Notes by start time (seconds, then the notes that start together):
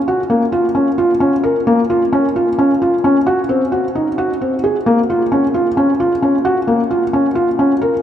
0.08 F#4
0.30 A#3
0.52 F4
0.75 C#4
0.98 F4
1.20 C#4
1.43 A#4
1.67 A#3
1.90 F4
2.13 C#4
2.36 F4
2.59 C#4
2.82 F4
3.04 C#4
3.26 F#4
3.49 C4
3.72 F#4
3.95 D#4
4.18 F#4
4.41 C4
4.64 G#4
4.86 A#3
5.10 F4
5.32 C#4
5.54 F4
5.77 C#4
6.00 F4
6.22 C#4
6.45 F#4
6.67 A#3
6.91 F4
7.13 C#4
7.35 F4
7.59 C#4
7.82 A#4